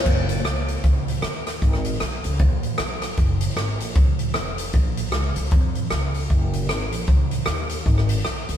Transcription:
0.06 upright bass F#1, kick, crash
0.29 closed hi-hat
0.45 upright bass C#2, cross-stick, closed hi-hat
0.68 closed hi-hat
0.84 upright bass C#2, kick, closed hi-hat
1.08 closed hi-hat
1.22 upright bass D#2, cross-stick, closed hi-hat
1.47 cross-stick, closed hi-hat
1.62 upright bass G#1, kick, closed hi-hat
1.73 cross-stick
1.85 closed hi-hat
2.00 upright bass B1, cross-stick, closed hi-hat
2.24 upright bass C#2, closed hi-hat
2.39 upright bass D#2, kick, closed hi-hat
2.63 closed hi-hat
2.78 upright bass B1, cross-stick, closed hi-hat
3.02 cross-stick, closed hi-hat
3.17 upright bass F#1, kick, closed hi-hat
3.41 closed hi-hat
3.56 upright bass G#1, cross-stick, closed hi-hat
3.80 upright bass A#1, closed hi-hat
3.95 upright bass C#2, kick, closed hi-hat
4.19 closed hi-hat
4.34 upright bass F1, cross-stick, closed hi-hat
4.58 closed hi-hat
4.73 upright bass A#1, kick, closed hi-hat
4.97 closed hi-hat
5.12 upright bass C#2, cross-stick, closed hi-hat
5.36 upright bass C#2, closed hi-hat
5.51 upright bass F2, kick, closed hi-hat
5.75 closed hi-hat
5.90 upright bass C#2, cross-stick, closed hi-hat
6.14 open hi-hat
6.30 upright bass F#1, kick, closed hi-hat
6.53 closed hi-hat
6.69 upright bass G#1, cross-stick, closed hi-hat
6.92 upright bass A#1, closed hi-hat
7.07 upright bass C#2, kick, closed hi-hat
7.31 closed hi-hat
7.46 upright bass D#2, cross-stick, closed hi-hat
7.69 closed hi-hat
7.86 upright bass G#1, kick, closed hi-hat
7.98 cross-stick
8.09 closed hi-hat
8.25 upright bass B1, cross-stick, closed hi-hat
8.49 upright bass C#2, closed hi-hat

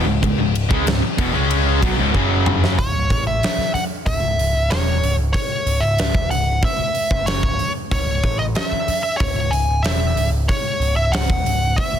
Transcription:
0.06 picked electric bass C#1, distorted electric guitar C#2 G#2
0.23 picked electric bass C#1, distorted electric guitar C#2 G#2, kick, ride
0.38 picked electric bass C#1, distorted electric guitar C#2 G#2
0.56 ride
0.69 picked electric bass C#2, distorted electric guitar C#3 G#3, kick
0.86 picked electric bass C#1, distorted electric guitar C#2 G#2, snare, ride
1.01 muted overdriven electric guitar stroke, muted picked electric bass stroke, muted distorted electric guitar stroke
1.18 picked electric bass E1, distorted electric guitar E2 B2, kick, ride
1.33 picked electric bass C#2, distorted electric guitar C#3 G#3 C#4
1.51 ride
1.81 picked electric bass B1, distorted electric guitar B2 F#3, kick, ride
1.98 picked electric bass C#1, distorted electric guitar C#2 G#2
2.14 picked electric bass F#1, distorted electric guitar F#2 C#3 F#3, kick
2.46 mid tom
2.64 snare
2.79 picked electric bass C#1, lead electric guitar C#5, kick, open hi-hat
2.94 picked electric bass C#1
3.10 picked electric bass A1, kick, open hi-hat
3.27 lead electric guitar E5
3.43 muted picked electric bass stroke, snare, open hi-hat
3.58 muted picked electric bass stroke, snare
3.74 lead electric guitar F#5, muted picked electric bass stroke, open hi-hat
4.06 picked electric bass C#1, lead electric guitar E5, kick, open hi-hat
4.23 picked electric bass C#1
4.39 picked electric bass C#1, open hi-hat
4.55 picked electric bass C#1
4.70 picked electric bass E1, lead electric guitar C#5, snare, open hi-hat
5.03 picked electric bass C#1, open hi-hat
5.19 picked electric bass C#1
5.33 lead electric guitar C#5, muted picked electric bass stroke, kick, open hi-hat
5.66 picked electric bass C#1, open hi-hat
5.80 picked electric bass C#1, lead electric guitar E5
5.98 picked electric bass C#1, snare, open hi-hat
6.15 picked electric bass D#1, kick
6.30 picked electric bass C#1, lead electric guitar F#5, open hi-hat
6.63 lead electric guitar E5, kick, open hi-hat
6.79 muted picked electric bass stroke
6.95 open hi-hat
7.11 picked electric bass F#1, kick
7.26 lead electric guitar C#5, snare, open hi-hat
7.43 picked electric bass C#1, kick
7.59 open hi-hat
7.91 picked electric bass C#1, lead electric guitar C#5, kick, open hi-hat
8.07 picked electric bass C#1
8.24 picked electric bass A1, kick, open hi-hat
8.39 lead electric guitar D#5
8.55 lead electric guitar D#5, muted picked electric bass stroke, snare, open hi-hat
8.67 lead electric guitar E5
8.72 muted picked electric bass stroke
8.88 muted picked electric bass stroke, open hi-hat
9.03 lead electric guitar E5
9.17 picked electric bass C#1, lead electric guitar C#5, kick, open hi-hat
9.36 picked electric bass C#1
9.51 picked electric bass C#1, lead electric guitar G#5, open hi-hat
9.69 picked electric bass C#1
9.83 picked electric bass E1, lead electric guitar E5, snare, open hi-hat
10.16 picked electric bass C#1, open hi-hat
10.32 picked electric bass C#1
10.48 lead electric guitar C#5, muted picked electric bass stroke, kick, open hi-hat
10.80 picked electric bass C#1, open hi-hat
10.96 picked electric bass C#1, lead electric guitar E5
11.12 picked electric bass C#1, lead electric guitar F#5, snare, open hi-hat
11.30 picked electric bass D#1, kick
11.45 picked electric bass C#1, open hi-hat
11.76 lead electric guitar E5, kick, open hi-hat
11.94 muted picked electric bass stroke

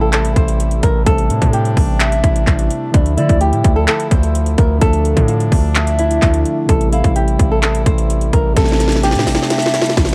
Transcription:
Already playing: 808-style bass A1, tine electric piano C3 G3 A3 E4, french horn section C3 G3 A3 E4
0.01 nylon-string guitar A4
0.13 nylon-string guitar A4, clap, closed hi-hat
0.25 closed hi-hat
0.36 808-style bass A1, nylon-string guitar C5, kick, closed hi-hat
0.48 closed hi-hat
0.60 closed hi-hat
0.71 closed hi-hat
0.83 808-style bass A1, nylon-string guitar A#4, kick, closed hi-hat
1.04 808-style bass A1, tine electric piano C3 G3 A3, french horn section D4, nylon-string guitar A4, kick, closed hi-hat
1.10 tine electric piano C4
1.18 closed hi-hat
1.30 808-style bass A2, closed hi-hat
1.42 808-style bass A2, kick, closed hi-hat
1.53 nylon-string guitar G4, closed hi-hat
1.65 closed hi-hat
1.77 808-style bass A1, kick, open hi-hat
2.00 soft synth lead E5, clap, closed hi-hat
2.12 closed hi-hat
2.24 808-style bass A1, nylon-string guitar E4, kick, closed hi-hat
2.36 closed hi-hat
2.47 808-style bass A1, kick, clap, closed hi-hat
2.59 closed hi-hat
2.71 closed hi-hat
2.91 808-style bass D2, tine electric piano D3 F3 A3, french horn section D3 F3 E4, nylon-string guitar D4, kick, closed hi-hat
2.97 tine electric piano E4
3.06 closed hi-hat
3.17 808-style bass D3, nylon-string guitar E4, soft synth lead D5, closed hi-hat
3.29 808-style bass D2, kick, closed hi-hat
3.41 nylon-string guitar G4, closed hi-hat
3.53 808-style bass A2, closed hi-hat
3.64 808-style bass D2, kick, closed hi-hat
3.76 nylon-string guitar A4
3.88 nylon-string guitar A4, clap, closed hi-hat
4.00 closed hi-hat
4.11 808-style bass D2, nylon-string guitar C5, kick, closed hi-hat
4.23 closed hi-hat
4.35 closed hi-hat
4.46 closed hi-hat
4.58 808-style bass D2, nylon-string guitar A#4, kick, closed hi-hat
4.79 808-style bass D2, tine electric piano D3 F3 A3, french horn section D4, nylon-string guitar A4, kick, closed hi-hat
4.84 tine electric piano E5
4.93 closed hi-hat
5.05 closed hi-hat
5.17 808-style bass A2, kick, closed hi-hat
5.28 nylon-string guitar F4, closed hi-hat
5.40 closed hi-hat
5.52 808-style bass D2, kick, open hi-hat
5.75 soft synth lead E5, clap, closed hi-hat
5.87 closed hi-hat
5.99 nylon-string guitar E4, closed hi-hat
6.11 closed hi-hat
6.21 808-style bass D2, tine electric piano D3 F3 A3 D4, kick, clap, closed hi-hat
6.34 closed hi-hat
6.45 closed hi-hat
6.66 808-style bass A1, tine electric piano C3 G3 A3, french horn section C3 G3 A3 E4, nylon-string guitar A4, kick, closed hi-hat
6.72 tine electric piano E4
6.81 closed hi-hat
6.92 nylon-string guitar E4, soft synth lead F5, closed hi-hat
7.04 808-style bass A1, kick, closed hi-hat
7.16 nylon-string guitar G4, closed hi-hat
7.28 closed hi-hat
7.39 808-style bass A1, kick, closed hi-hat
7.51 nylon-string guitar A4
7.62 nylon-string guitar A4, clap, closed hi-hat
7.75 closed hi-hat
7.86 808-style bass A1, nylon-string guitar C5, kick, closed hi-hat
7.98 closed hi-hat
8.10 closed hi-hat
8.21 closed hi-hat
8.33 808-style bass A1, nylon-string guitar A#4, kick, closed hi-hat
8.54 808-style bass A1, tine electric piano C3 G3 A3, french horn section D4, nylon-string guitar A4, kick, snare, closed hi-hat
8.60 tine electric piano C4
8.64 snare, closed hi-hat
8.72 snare
8.80 snare, closed hi-hat
8.88 snare
8.92 snare, closed hi-hat
9.03 nylon-string guitar G4, snare, closed hi-hat
9.11 808-style bass A2, snare
9.15 snare, closed hi-hat
9.27 808-style bass A1, snare, open hi-hat
9.35 snare
9.43 snare
9.50 soft synth lead E5, snare, closed hi-hat
9.58 snare
9.62 snare, closed hi-hat
9.74 nylon-string guitar E4, snare, closed hi-hat
9.82 snare
9.86 snare, closed hi-hat
9.97 808-style bass A1, kick, snare, closed hi-hat
10.05 snare, closed hi-hat

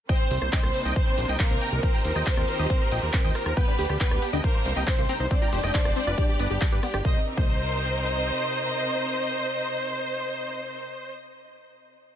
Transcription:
0.09 string section C3 G3 A#3 D4 D#4, violin section C4 C5, supersaw synth D#5 G5, kick, closed hi-hat
0.20 supersaw synth C5, closed hi-hat
0.31 analog synth bass C2, supersaw synth C5, open hi-hat
0.42 analog synth bass C2, supersaw synth C5, cross-stick, closed hi-hat
0.53 violin section C4 C5, supersaw synth D#5 G5, kick, clap, closed hi-hat
0.63 analog synth bass C2, supersaw synth C5, cross-stick, closed hi-hat
0.74 supersaw synth C5, open hi-hat
0.85 analog synth bass C2, supersaw synth D#5 G5, closed hi-hat
0.96 violin section C4 C5, supersaw synth C5, kick, closed hi-hat
1.07 supersaw synth C5, closed hi-hat
1.18 analog synth bass A#1, supersaw synth C5, open hi-hat
1.29 analog synth bass C2, supersaw synth D#5 G5, closed hi-hat
1.40 violin section A#3 A#4, supersaw synth C5, kick, clap, closed hi-hat
1.50 analog synth bass C2, supersaw synth C5, closed hi-hat
1.61 supersaw synth G5 A#5, open hi-hat
1.72 analog synth bass C2, supersaw synth A#4, closed hi-hat
1.83 string section D#3 F4 G4 A#4, violin section C4 C5, supersaw synth A#4, kick, closed hi-hat
1.94 supersaw synth G5 A#5, closed hi-hat
2.05 analog synth bass D#2, supersaw synth A#4, open hi-hat
2.16 analog synth bass D#2, supersaw synth D#5 G5, cross-stick, closed hi-hat
2.26 supersaw synth A#4, kick, clap, closed hi-hat
2.37 analog synth bass D#2, supersaw synth A#4, cross-stick, closed hi-hat
2.48 supersaw synth A#4, open hi-hat
2.59 analog synth bass D#2, supersaw synth G4 D#5, closed hi-hat
2.70 supersaw synth A#4, kick, closed hi-hat
2.81 supersaw synth A#4, closed hi-hat
2.92 analog synth bass A#1, supersaw synth D#5 G5, open hi-hat
3.02 analog synth bass D#2, supersaw synth A#4, closed hi-hat
3.13 supersaw synth A#4, kick, clap, closed hi-hat
3.24 analog synth bass D#2, supersaw synth D#5 G5, closed hi-hat
3.35 supersaw synth A#4, cross-stick, open hi-hat
3.46 analog synth bass D#2, supersaw synth A#4, cross-stick, closed hi-hat
3.57 string section G3 B3 D4, violin section B3 B4, synth arpeggio sound B3, supersaw synth B4 G5, kick, closed hi-hat
3.68 synth arpeggio sound D4, supersaw synth G4, closed hi-hat
3.79 analog synth bass D2, supersaw synth G4, synth arpeggio sound G4, open hi-hat
3.89 analog synth bass D2, supersaw synth G4, cross-stick, closed hi-hat
4.00 violin section B3 B4, supersaw synth B4 G5, synth arpeggio sound B4, kick, clap, closed hi-hat
4.11 analog synth bass D2, supersaw synth G4, cross-stick, closed hi-hat
4.22 synth arpeggio sound B3, supersaw synth G4, open hi-hat
4.33 analog synth bass D2, synth arpeggio sound D4, supersaw synth D#5 G5, closed hi-hat
4.44 string section C3 G3 A#3 D#4, violin section A#3 A#4, synth arpeggio sound D#4, supersaw synth C5, kick, closed hi-hat
4.55 supersaw synth C5, closed hi-hat
4.65 analog synth bass C2, supersaw synth C5, open hi-hat
4.76 analog synth bass C2, synth arpeggio sound G4, supersaw synth D#5 G5, closed hi-hat
4.87 violin section C4 C5, supersaw synth C5, kick, clap, closed hi-hat
4.98 analog synth bass C2, synth arpeggio sound A#3, supersaw synth C5, closed hi-hat
5.09 synth arpeggio sound C4, supersaw synth G5 A#5, open hi-hat
5.20 analog synth bass C2, synth arpeggio sound D#4, supersaw synth C5, closed hi-hat
5.31 string section G#3 F4 G4, synth arpeggio sound C4, violin section D4 D5, supersaw synth C5, kick, closed hi-hat
5.42 synth arpeggio sound F4, supersaw synth G5 A#5, closed hi-hat
5.53 analog synth bass F1, synth arpeggio sound G4, supersaw synth C5, open hi-hat
5.63 analog synth bass F1, supersaw synth D#5 G5, cross-stick, closed hi-hat
5.74 synth arpeggio sound G#4, supersaw synth C5, kick, clap, closed hi-hat
5.85 analog synth bass F1, supersaw synth C5, cross-stick, closed hi-hat
5.96 synth arpeggio sound C4, supersaw synth C5, open hi-hat
6.07 analog synth bass F1, synth arpeggio sound F4, supersaw synth B4 D5, closed hi-hat
6.18 string section B3 D4, synth arpeggio sound G4, supersaw synth G4, kick, closed hi-hat
6.29 supersaw synth G4, closed hi-hat
6.40 analog synth bass G1, synth arpeggio sound B3, supersaw synth B4 D5, open hi-hat
6.50 analog synth bass G1, synth arpeggio sound G4, supersaw synth G4, closed hi-hat
6.61 supersaw synth G4, kick, clap, closed hi-hat
6.72 analog synth bass G2, supersaw synth G4 B4, synth arpeggio sound D5, closed hi-hat
6.83 synth arpeggio sound B3, supersaw synth G4, cross-stick, open hi-hat
6.94 analog synth bass G1, synth arpeggio sound G4, supersaw synth G4, cross-stick, closed hi-hat
7.05 analog synth bass C2, string section C3 C4 D#4 A#4, synth arpeggio sound A#3, supersaw synth C5, violin section D#5, kick
7.37 analog synth bass C2, synth arpeggio sound A#3, supersaw synth C5, violin section D#5, kick

